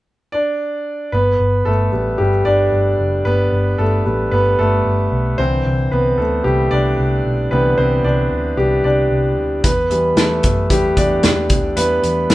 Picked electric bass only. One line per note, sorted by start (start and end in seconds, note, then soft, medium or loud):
1.13 1.35 G1 medium
1.40 1.61 G1 medium
1.66 1.88 G1 medium
1.93 2.15 A1 medium
2.20 2.41 G1 medium
2.46 2.68 G1 medium
2.72 2.94 G1 medium
2.99 3.21 F#1 medium
3.26 3.47 G1 medium
3.52 3.74 G1 medium
3.79 4.01 G1 medium
4.06 4.28 A1 medium
4.32 4.54 G1 medium
4.59 4.81 G1 medium
4.85 5.07 G1 medium
5.12 5.34 B1 medium
5.39 5.61 C2 medium
5.65 5.87 C2 medium
5.92 6.14 C2 medium
6.18 6.40 D2 medium
6.45 6.67 C2 medium
6.72 6.94 C2 medium
6.98 7.20 C2 medium
7.25 7.47 B1 medium
7.51 7.73 C2 medium
7.78 8.00 C2 medium
8.04 8.26 C2 medium
8.31 8.53 D2 medium
8.57 8.79 C2 medium
8.84 9.06 C2 medium
9.10 9.37 C2 medium
9.37 9.59 D2 medium
9.64 9.86 E2 medium
9.90 10.12 E2 medium
10.16 10.39 E2 medium
10.44 10.66 F#2 medium
10.70 10.92 E2 medium
10.97 11.19 E2 medium
11.24 11.50 E2 medium
11.50 11.72 D2 medium
11.77 11.99 E2 medium
12.04 12.25 E2 medium
12.30 12.35 E2 medium